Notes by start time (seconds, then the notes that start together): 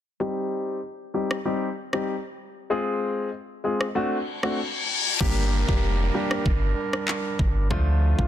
0.20 G3 C4 D#4 G4
1.14 G3 C4 D#4 G4
1.31 cross-stick
1.45 G3 C4 D#4 G4
1.93 G3 C4 D#4 G4, cross-stick
2.70 G#3 C4 F4 G#4
3.64 G#3 C4 F4 G#4
3.81 cross-stick
3.95 A3 C4 D4 F#4, reverse cymbal
4.43 A3 C4 D4 F#4, cross-stick
5.20 G1 G3 A#3 D4 G4 A#4, kick, crash, downlifter
5.68 F1 G3 A#3 D4 G4, kick
6.14 G3 A#3 D4 G4
6.31 cross-stick
6.46 G1, kick
6.93 cross-stick
7.08 clap
7.39 G1, kick
7.70 D2 D3 F3 A3 D4 F4, kick
8.18 C2 F3 A3 D4 F4, kick